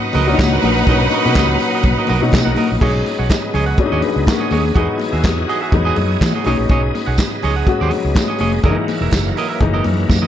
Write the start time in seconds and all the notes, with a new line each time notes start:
Already playing: F#3 A#3 C#4 D#4 B4 F#5
0.03 muted clean electric guitar stroke
0.13 C#2 F#4 A#4 D#5, open hi-hat, muted conga, low conga
0.27 A#2 F#3 C#4 D4 F#4 A#4 D#5
0.34 D#4, high conga
0.39 C#2, muted clean electric guitar stroke, kick, snare, clap, closed hi-hat, tambourine
0.53 F#4 A#4 F#5
0.62 A#1 F#4 A#4 D#5, open hi-hat, high conga
0.77 muted clean electric guitar stroke
0.87 B1 A#2 F#3 C#4 D#4 F#4 A#4 D#5, kick, closed hi-hat
1.11 F#4 A#4 D#5, open hi-hat, muted conga
1.24 A#2 B2 F#3 C#4 D#4 F#4 A#4 D#5
1.34 C#2 F#4 A#4, kick, snare, clap, closed hi-hat, tambourine, high conga
1.38 D#5
1.50 muted clean electric guitar stroke
1.60 muted clean electric guitar stroke, open hi-hat
1.75 F#4 A#4 D#5
1.83 B1, muted clean electric guitar stroke, kick, closed hi-hat, muted conga, low conga
1.98 F#4 A#4 D#5
2.07 B1 F#4 A#4 D#5, open hi-hat, muted conga, low conga
2.21 A#2 B2 F#3 C#4 D#4, muted clean electric guitar stroke
2.32 B2, muted clean electric guitar stroke, kick, snare, clap, closed hi-hat, tambourine, high conga
2.45 B1 F#4 A#4 F#5
2.56 F#4 A#4 D#5, open hi-hat, high conga
2.71 A#1, muted clean electric guitar stroke
2.80 B1 F#3 G#3 B3 C#4 D#4 G#4 C#5 D#5, kick, crash, muted conga
2.95 muted clean electric guitar stroke
3.06 muted clean electric guitar stroke, open hi-hat, muted conga
3.19 B1 G#4 C#5 F#5
3.29 muted clean electric guitar stroke, kick, snare, clap, closed hi-hat, tambourine, high conga
3.42 muted clean electric guitar stroke
3.54 C#2 G#4 C#5 D#5, open hi-hat, low conga
3.66 G#4 C#5 F#5
3.78 F#3 G#3 C#4 D4, muted clean electric guitar stroke, kick, closed hi-hat, muted conga
3.86 D#4
3.92 D#2 G#4 C#5 D#5
4.02 G#4 B4, open hi-hat, muted conga, low conga
4.16 C#2, muted clean electric guitar stroke
4.27 F#4 A#4, muted clean electric guitar stroke, kick, snare, clap, closed hi-hat, tambourine, high conga
4.40 G#4 C#5 D#5
4.51 D#2 G#4 C#5 D#5, open hi-hat, high conga
4.65 muted clean electric guitar stroke
4.74 E2 E3 F#3 G#3 B3 D#4 F#4 G#4 D#5, kick, closed hi-hat, muted conga
4.89 muted clean electric guitar stroke
4.99 muted clean electric guitar stroke, open hi-hat, muted conga
5.13 D#2 F#4 G#4 E5
5.23 E2, kick, snare, clap, closed hi-hat, tambourine, high conga
5.38 muted clean electric guitar stroke
5.48 F#4 G#4 D#5, open hi-hat
5.61 F#4 G#4 E5
5.72 E2 F#3 G#3 B3 D#4, kick, closed hi-hat, muted conga, low conga
5.85 F#4 G#4 D#5
5.96 F#2, muted clean electric guitar stroke, open hi-hat, muted conga, low conga
6.10 muted clean electric guitar stroke
6.21 E3, muted clean electric guitar stroke, kick, snare, clap, closed hi-hat, tambourine, high conga
6.35 F#4 G#4 D#5
6.44 B1 F#3 G#3 B3 C#4 D#4 G#4 C#5 D#5, open hi-hat, high conga
6.59 A#1, muted clean electric guitar stroke
6.69 B1 G#4 C#5 D#5, kick, closed hi-hat, muted conga
6.83 muted clean electric guitar stroke
6.94 muted clean electric guitar stroke, open hi-hat, muted conga
7.06 B1 G#4 C#5 F#5
7.18 muted clean electric guitar stroke, kick, snare, clap, closed hi-hat, tambourine, high conga
7.31 muted clean electric guitar stroke
7.43 C#2 G#4 C#5 D#5, open hi-hat, low conga
7.56 G#4 C#5 F#5
7.67 F#3 G#3 C#4 F#4, muted clean electric guitar stroke, kick, closed hi-hat, muted conga
7.81 D#2 G#4 C#5 D#5
7.91 muted clean electric guitar stroke, open hi-hat, muted conga, low conga
8.05 C#2, muted clean electric guitar stroke
8.15 muted clean electric guitar stroke, kick, snare, clap, closed hi-hat, tambourine, high conga
8.28 G#4 C#5 D#5
8.38 F1 G#4 C#5 D#5, open hi-hat, high conga
8.53 muted clean electric guitar stroke
8.62 F#1 E3 F#3 G#3 A#3 D4 E4 A#4 D#5, kick, closed hi-hat, muted conga
8.71 D#4
8.78 muted clean electric guitar stroke
8.88 muted clean electric guitar stroke, open hi-hat, muted conga
9.01 E1 E4 A#4 E5
9.11 F#1, muted clean electric guitar stroke, kick, snare, clap, closed hi-hat, tambourine, high conga
9.27 muted clean electric guitar stroke
9.37 E4 A#4 D#5, open hi-hat
9.49 E4 A#4 E5
9.60 F#1 E3 G#3 A#3 D#4, muted clean electric guitar stroke, kick, closed hi-hat, muted conga, low conga
9.74 E4 A#4 D#5
9.84 F#2, muted clean electric guitar stroke, open hi-hat, muted conga, low conga
9.97 muted clean electric guitar stroke
10.08 F#2, muted clean electric guitar stroke, kick, snare, tambourine, high conga
10.22 E4 A#4 D#5, high tom